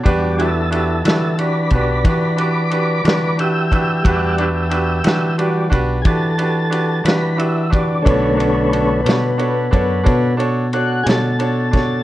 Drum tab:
RD |xxxxxxxxxxxx|xxxxxxxxxxxx|xxxxxxxxxxxx|
SD |---o-----o--|---o-----o--|---o-----o-o|
BD |o----oo----o|o----oo----o|o----oo----o|